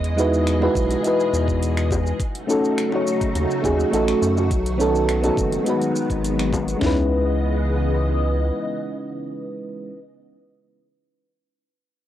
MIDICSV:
0, 0, Header, 1, 5, 480
1, 0, Start_track
1, 0, Key_signature, 4, "minor"
1, 0, Tempo, 576923
1, 1831, Time_signature, 4, 2, 24, 8
1, 10049, End_track
2, 0, Start_track
2, 0, Title_t, "FM electric piano"
2, 0, Program_c, 0, 5
2, 138, Note_on_c, 0, 56, 92
2, 144, Note_on_c, 0, 63, 86
2, 150, Note_on_c, 0, 64, 90
2, 157, Note_on_c, 0, 66, 86
2, 165, Note_on_c, 0, 71, 102
2, 479, Note_off_c, 0, 56, 0
2, 481, Note_off_c, 0, 63, 0
2, 485, Note_off_c, 0, 64, 0
2, 488, Note_off_c, 0, 66, 0
2, 492, Note_off_c, 0, 71, 0
2, 499, Note_on_c, 0, 56, 99
2, 508, Note_on_c, 0, 63, 89
2, 512, Note_on_c, 0, 64, 89
2, 521, Note_on_c, 0, 66, 88
2, 527, Note_on_c, 0, 71, 114
2, 828, Note_off_c, 0, 56, 0
2, 838, Note_on_c, 0, 56, 85
2, 840, Note_off_c, 0, 63, 0
2, 842, Note_off_c, 0, 64, 0
2, 846, Note_off_c, 0, 66, 0
2, 850, Note_off_c, 0, 71, 0
2, 853, Note_on_c, 0, 63, 81
2, 867, Note_on_c, 0, 64, 84
2, 880, Note_on_c, 0, 66, 79
2, 893, Note_on_c, 0, 71, 102
2, 1801, Note_off_c, 0, 56, 0
2, 1808, Note_off_c, 0, 63, 0
2, 1815, Note_off_c, 0, 64, 0
2, 1822, Note_off_c, 0, 66, 0
2, 1828, Note_off_c, 0, 71, 0
2, 2056, Note_on_c, 0, 57, 90
2, 2063, Note_on_c, 0, 61, 83
2, 2069, Note_on_c, 0, 63, 81
2, 2077, Note_on_c, 0, 66, 82
2, 2084, Note_on_c, 0, 69, 98
2, 2393, Note_off_c, 0, 57, 0
2, 2401, Note_off_c, 0, 61, 0
2, 2403, Note_on_c, 0, 57, 80
2, 2404, Note_off_c, 0, 63, 0
2, 2408, Note_off_c, 0, 66, 0
2, 2412, Note_off_c, 0, 69, 0
2, 2417, Note_on_c, 0, 61, 67
2, 2431, Note_on_c, 0, 63, 64
2, 2446, Note_on_c, 0, 66, 69
2, 2459, Note_on_c, 0, 73, 81
2, 2988, Note_off_c, 0, 57, 0
2, 2995, Note_off_c, 0, 61, 0
2, 3002, Note_off_c, 0, 63, 0
2, 3009, Note_off_c, 0, 66, 0
2, 3011, Note_on_c, 0, 57, 89
2, 3015, Note_off_c, 0, 73, 0
2, 3019, Note_on_c, 0, 61, 82
2, 3027, Note_on_c, 0, 63, 81
2, 3032, Note_on_c, 0, 66, 77
2, 3039, Note_on_c, 0, 68, 97
2, 3233, Note_off_c, 0, 57, 0
2, 3237, Note_off_c, 0, 61, 0
2, 3241, Note_off_c, 0, 63, 0
2, 3244, Note_off_c, 0, 66, 0
2, 3247, Note_off_c, 0, 68, 0
2, 3254, Note_on_c, 0, 57, 95
2, 3261, Note_on_c, 0, 61, 83
2, 3268, Note_on_c, 0, 63, 86
2, 3273, Note_on_c, 0, 66, 84
2, 3281, Note_on_c, 0, 69, 105
2, 3729, Note_off_c, 0, 57, 0
2, 3732, Note_off_c, 0, 61, 0
2, 3736, Note_off_c, 0, 63, 0
2, 3738, Note_off_c, 0, 66, 0
2, 3742, Note_off_c, 0, 69, 0
2, 3976, Note_on_c, 0, 59, 98
2, 3984, Note_on_c, 0, 61, 91
2, 3990, Note_on_c, 0, 63, 84
2, 3997, Note_on_c, 0, 66, 87
2, 4004, Note_on_c, 0, 69, 113
2, 4318, Note_off_c, 0, 59, 0
2, 4322, Note_off_c, 0, 61, 0
2, 4325, Note_off_c, 0, 63, 0
2, 4328, Note_off_c, 0, 66, 0
2, 4332, Note_off_c, 0, 69, 0
2, 4340, Note_on_c, 0, 59, 91
2, 4348, Note_on_c, 0, 61, 90
2, 4354, Note_on_c, 0, 63, 85
2, 4362, Note_on_c, 0, 66, 92
2, 4368, Note_on_c, 0, 69, 108
2, 4676, Note_off_c, 0, 59, 0
2, 4680, Note_off_c, 0, 61, 0
2, 4683, Note_off_c, 0, 63, 0
2, 4683, Note_on_c, 0, 56, 91
2, 4687, Note_off_c, 0, 66, 0
2, 4690, Note_off_c, 0, 69, 0
2, 4698, Note_on_c, 0, 59, 89
2, 4711, Note_on_c, 0, 63, 85
2, 4724, Note_on_c, 0, 66, 82
2, 4739, Note_on_c, 0, 71, 97
2, 5620, Note_off_c, 0, 56, 0
2, 5630, Note_on_c, 0, 56, 89
2, 5651, Note_off_c, 0, 59, 0
2, 5651, Note_on_c, 0, 61, 76
2, 5657, Note_off_c, 0, 63, 0
2, 5664, Note_off_c, 0, 66, 0
2, 5671, Note_off_c, 0, 71, 0
2, 5671, Note_on_c, 0, 63, 74
2, 5691, Note_on_c, 0, 64, 82
2, 5710, Note_on_c, 0, 71, 103
2, 8243, Note_off_c, 0, 56, 0
2, 8264, Note_off_c, 0, 61, 0
2, 8284, Note_off_c, 0, 63, 0
2, 8304, Note_off_c, 0, 64, 0
2, 8323, Note_off_c, 0, 71, 0
2, 10049, End_track
3, 0, Start_track
3, 0, Title_t, "String machine"
3, 0, Program_c, 1, 50
3, 0, Note_on_c, 1, 47, 80
3, 0, Note_on_c, 1, 52, 76
3, 0, Note_on_c, 1, 56, 72
3, 0, Note_on_c, 1, 68, 91
3, 0, Note_on_c, 1, 75, 92
3, 1795, Note_off_c, 1, 52, 0
3, 1796, Note_off_c, 1, 56, 0
3, 1796, Note_off_c, 1, 75, 0
3, 1809, Note_off_c, 1, 47, 0
3, 1810, Note_off_c, 1, 68, 0
3, 1829, Note_on_c, 1, 66, 94
3, 1830, Note_on_c, 1, 49, 83
3, 1830, Note_on_c, 1, 63, 75
3, 1831, Note_on_c, 1, 57, 75
3, 1832, Note_on_c, 1, 54, 73
3, 3731, Note_off_c, 1, 63, 0
3, 3732, Note_off_c, 1, 49, 0
3, 3752, Note_on_c, 1, 59, 73
3, 3754, Note_on_c, 1, 51, 82
3, 4682, Note_off_c, 1, 57, 0
3, 4702, Note_off_c, 1, 59, 0
3, 4715, Note_on_c, 1, 56, 73
3, 4716, Note_on_c, 1, 59, 69
3, 5637, Note_off_c, 1, 66, 0
3, 5639, Note_off_c, 1, 54, 0
3, 5653, Note_off_c, 1, 51, 0
3, 5654, Note_off_c, 1, 59, 0
3, 5656, Note_off_c, 1, 56, 0
3, 5664, Note_on_c, 1, 52, 75
3, 5664, Note_on_c, 1, 59, 74
3, 5665, Note_on_c, 1, 49, 78
3, 5665, Note_on_c, 1, 75, 90
3, 5666, Note_on_c, 1, 56, 75
3, 8220, Note_off_c, 1, 52, 0
3, 8220, Note_off_c, 1, 59, 0
3, 8220, Note_off_c, 1, 75, 0
3, 8221, Note_off_c, 1, 49, 0
3, 8221, Note_off_c, 1, 56, 0
3, 10049, End_track
4, 0, Start_track
4, 0, Title_t, "Analog synth bass"
4, 0, Program_c, 2, 38
4, 0, Note_on_c, 2, 40, 76
4, 570, Note_off_c, 2, 40, 0
4, 626, Note_on_c, 2, 35, 87
4, 795, Note_off_c, 2, 35, 0
4, 1107, Note_on_c, 2, 40, 83
4, 1770, Note_off_c, 2, 40, 0
4, 2789, Note_on_c, 2, 39, 100
4, 2874, Note_off_c, 2, 39, 0
4, 3028, Note_on_c, 2, 39, 83
4, 3196, Note_off_c, 2, 39, 0
4, 3270, Note_on_c, 2, 33, 98
4, 3437, Note_off_c, 2, 33, 0
4, 3509, Note_on_c, 2, 42, 99
4, 3750, Note_on_c, 2, 35, 73
4, 3763, Note_off_c, 2, 42, 0
4, 4412, Note_off_c, 2, 35, 0
4, 4470, Note_on_c, 2, 30, 85
4, 4637, Note_off_c, 2, 30, 0
4, 5074, Note_on_c, 2, 32, 96
4, 5612, Note_off_c, 2, 32, 0
4, 5674, Note_on_c, 2, 37, 91
4, 7079, Note_off_c, 2, 37, 0
4, 10049, End_track
5, 0, Start_track
5, 0, Title_t, "Drums"
5, 35, Note_on_c, 9, 42, 46
5, 118, Note_off_c, 9, 42, 0
5, 155, Note_on_c, 9, 82, 76
5, 238, Note_off_c, 9, 82, 0
5, 280, Note_on_c, 9, 82, 30
5, 363, Note_off_c, 9, 82, 0
5, 391, Note_on_c, 9, 26, 73
5, 391, Note_on_c, 9, 42, 68
5, 396, Note_on_c, 9, 82, 45
5, 475, Note_off_c, 9, 26, 0
5, 475, Note_off_c, 9, 42, 0
5, 479, Note_off_c, 9, 82, 0
5, 516, Note_on_c, 9, 60, 56
5, 599, Note_off_c, 9, 60, 0
5, 627, Note_on_c, 9, 36, 106
5, 634, Note_on_c, 9, 82, 73
5, 711, Note_off_c, 9, 36, 0
5, 717, Note_off_c, 9, 82, 0
5, 754, Note_on_c, 9, 42, 49
5, 758, Note_on_c, 9, 82, 32
5, 760, Note_on_c, 9, 60, 35
5, 837, Note_off_c, 9, 42, 0
5, 842, Note_off_c, 9, 82, 0
5, 843, Note_off_c, 9, 60, 0
5, 869, Note_on_c, 9, 42, 65
5, 873, Note_on_c, 9, 82, 43
5, 952, Note_off_c, 9, 42, 0
5, 956, Note_off_c, 9, 82, 0
5, 999, Note_on_c, 9, 82, 29
5, 1082, Note_off_c, 9, 82, 0
5, 1115, Note_on_c, 9, 82, 77
5, 1199, Note_off_c, 9, 82, 0
5, 1231, Note_on_c, 9, 36, 62
5, 1240, Note_on_c, 9, 82, 33
5, 1314, Note_off_c, 9, 36, 0
5, 1323, Note_off_c, 9, 82, 0
5, 1352, Note_on_c, 9, 42, 66
5, 1357, Note_on_c, 9, 82, 42
5, 1436, Note_off_c, 9, 42, 0
5, 1440, Note_off_c, 9, 82, 0
5, 1475, Note_on_c, 9, 26, 78
5, 1475, Note_on_c, 9, 42, 33
5, 1480, Note_on_c, 9, 82, 31
5, 1559, Note_off_c, 9, 26, 0
5, 1559, Note_off_c, 9, 42, 0
5, 1563, Note_off_c, 9, 82, 0
5, 1587, Note_on_c, 9, 36, 105
5, 1596, Note_on_c, 9, 82, 70
5, 1597, Note_on_c, 9, 60, 64
5, 1670, Note_off_c, 9, 36, 0
5, 1679, Note_off_c, 9, 82, 0
5, 1680, Note_off_c, 9, 60, 0
5, 1720, Note_on_c, 9, 82, 32
5, 1803, Note_off_c, 9, 82, 0
5, 1828, Note_on_c, 9, 36, 112
5, 1832, Note_on_c, 9, 42, 70
5, 1836, Note_on_c, 9, 82, 41
5, 1911, Note_off_c, 9, 36, 0
5, 1915, Note_off_c, 9, 42, 0
5, 1919, Note_off_c, 9, 82, 0
5, 1956, Note_on_c, 9, 42, 47
5, 2039, Note_off_c, 9, 42, 0
5, 2077, Note_on_c, 9, 82, 79
5, 2161, Note_off_c, 9, 82, 0
5, 2202, Note_on_c, 9, 82, 31
5, 2285, Note_off_c, 9, 82, 0
5, 2313, Note_on_c, 9, 26, 75
5, 2313, Note_on_c, 9, 42, 70
5, 2317, Note_on_c, 9, 82, 42
5, 2396, Note_off_c, 9, 26, 0
5, 2396, Note_off_c, 9, 42, 0
5, 2400, Note_off_c, 9, 82, 0
5, 2431, Note_on_c, 9, 60, 52
5, 2514, Note_off_c, 9, 60, 0
5, 2556, Note_on_c, 9, 82, 75
5, 2639, Note_off_c, 9, 82, 0
5, 2672, Note_on_c, 9, 36, 102
5, 2674, Note_on_c, 9, 42, 50
5, 2678, Note_on_c, 9, 82, 33
5, 2755, Note_off_c, 9, 36, 0
5, 2757, Note_off_c, 9, 42, 0
5, 2761, Note_off_c, 9, 82, 0
5, 2790, Note_on_c, 9, 42, 70
5, 2795, Note_on_c, 9, 82, 39
5, 2873, Note_off_c, 9, 42, 0
5, 2878, Note_off_c, 9, 82, 0
5, 2919, Note_on_c, 9, 82, 30
5, 3002, Note_off_c, 9, 82, 0
5, 3028, Note_on_c, 9, 36, 55
5, 3030, Note_on_c, 9, 60, 49
5, 3036, Note_on_c, 9, 82, 72
5, 3112, Note_off_c, 9, 36, 0
5, 3114, Note_off_c, 9, 60, 0
5, 3119, Note_off_c, 9, 82, 0
5, 3161, Note_on_c, 9, 82, 31
5, 3244, Note_off_c, 9, 82, 0
5, 3274, Note_on_c, 9, 42, 71
5, 3278, Note_on_c, 9, 82, 43
5, 3357, Note_off_c, 9, 42, 0
5, 3361, Note_off_c, 9, 82, 0
5, 3396, Note_on_c, 9, 26, 81
5, 3396, Note_on_c, 9, 42, 33
5, 3400, Note_on_c, 9, 82, 30
5, 3479, Note_off_c, 9, 26, 0
5, 3479, Note_off_c, 9, 42, 0
5, 3483, Note_off_c, 9, 82, 0
5, 3516, Note_on_c, 9, 82, 74
5, 3600, Note_off_c, 9, 82, 0
5, 3639, Note_on_c, 9, 82, 32
5, 3641, Note_on_c, 9, 60, 47
5, 3722, Note_off_c, 9, 82, 0
5, 3724, Note_off_c, 9, 60, 0
5, 3750, Note_on_c, 9, 36, 116
5, 3752, Note_on_c, 9, 42, 75
5, 3756, Note_on_c, 9, 82, 46
5, 3833, Note_off_c, 9, 36, 0
5, 3835, Note_off_c, 9, 42, 0
5, 3839, Note_off_c, 9, 82, 0
5, 3877, Note_on_c, 9, 42, 48
5, 3882, Note_on_c, 9, 82, 31
5, 3961, Note_off_c, 9, 42, 0
5, 3965, Note_off_c, 9, 82, 0
5, 3996, Note_on_c, 9, 82, 75
5, 4079, Note_off_c, 9, 82, 0
5, 4121, Note_on_c, 9, 82, 31
5, 4204, Note_off_c, 9, 82, 0
5, 4233, Note_on_c, 9, 26, 84
5, 4233, Note_on_c, 9, 42, 70
5, 4237, Note_on_c, 9, 82, 41
5, 4316, Note_off_c, 9, 26, 0
5, 4316, Note_off_c, 9, 42, 0
5, 4320, Note_off_c, 9, 82, 0
5, 4356, Note_on_c, 9, 42, 33
5, 4360, Note_on_c, 9, 60, 51
5, 4360, Note_on_c, 9, 82, 32
5, 4439, Note_off_c, 9, 42, 0
5, 4443, Note_off_c, 9, 60, 0
5, 4444, Note_off_c, 9, 82, 0
5, 4471, Note_on_c, 9, 36, 104
5, 4477, Note_on_c, 9, 82, 77
5, 4554, Note_off_c, 9, 36, 0
5, 4560, Note_off_c, 9, 82, 0
5, 4596, Note_on_c, 9, 42, 51
5, 4596, Note_on_c, 9, 60, 38
5, 4601, Note_on_c, 9, 82, 34
5, 4679, Note_off_c, 9, 42, 0
5, 4679, Note_off_c, 9, 60, 0
5, 4684, Note_off_c, 9, 82, 0
5, 4712, Note_on_c, 9, 42, 73
5, 4716, Note_on_c, 9, 82, 40
5, 4795, Note_off_c, 9, 42, 0
5, 4799, Note_off_c, 9, 82, 0
5, 4838, Note_on_c, 9, 42, 34
5, 4842, Note_on_c, 9, 82, 29
5, 4921, Note_off_c, 9, 42, 0
5, 4926, Note_off_c, 9, 82, 0
5, 4957, Note_on_c, 9, 82, 71
5, 5041, Note_off_c, 9, 82, 0
5, 5073, Note_on_c, 9, 36, 63
5, 5077, Note_on_c, 9, 42, 31
5, 5081, Note_on_c, 9, 82, 32
5, 5157, Note_off_c, 9, 36, 0
5, 5160, Note_off_c, 9, 42, 0
5, 5164, Note_off_c, 9, 82, 0
5, 5195, Note_on_c, 9, 42, 70
5, 5199, Note_on_c, 9, 82, 44
5, 5278, Note_off_c, 9, 42, 0
5, 5283, Note_off_c, 9, 82, 0
5, 5320, Note_on_c, 9, 26, 82
5, 5320, Note_on_c, 9, 42, 35
5, 5324, Note_on_c, 9, 82, 31
5, 5403, Note_off_c, 9, 26, 0
5, 5403, Note_off_c, 9, 42, 0
5, 5407, Note_off_c, 9, 82, 0
5, 5430, Note_on_c, 9, 36, 100
5, 5437, Note_on_c, 9, 60, 66
5, 5439, Note_on_c, 9, 82, 73
5, 5513, Note_off_c, 9, 36, 0
5, 5520, Note_off_c, 9, 60, 0
5, 5522, Note_off_c, 9, 82, 0
5, 5559, Note_on_c, 9, 42, 33
5, 5563, Note_on_c, 9, 82, 32
5, 5642, Note_off_c, 9, 42, 0
5, 5646, Note_off_c, 9, 82, 0
5, 5668, Note_on_c, 9, 38, 98
5, 5668, Note_on_c, 9, 43, 103
5, 5751, Note_off_c, 9, 38, 0
5, 5751, Note_off_c, 9, 43, 0
5, 10049, End_track
0, 0, End_of_file